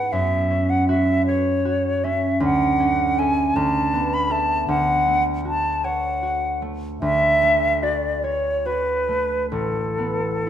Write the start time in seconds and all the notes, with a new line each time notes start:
Already playing: G#2 B3 D#4 F#4 G#4 F#5
0.12 F#2 E5
0.51 C#4
0.70 F#5
0.89 F#4 E5
1.26 C#5
1.65 F#4
2.04 C#4 E5
2.40 D2 F#5
2.80 C#4
3.19 A4 E5 G#5
3.56 D2 A5
3.94 B3
4.14 B5
4.30 A4 E5 A5
4.68 D2 F#5
5.08 A3
5.45 F#4 A5
5.84 C#5 F#5
6.23 F#4
6.62 A3
7.01 D2 E5
7.43 A3
7.82 F#4 D5
8.24 C#5
8.66 F#4 B4
9.09 A3
9.51 A1 A4
9.98 B3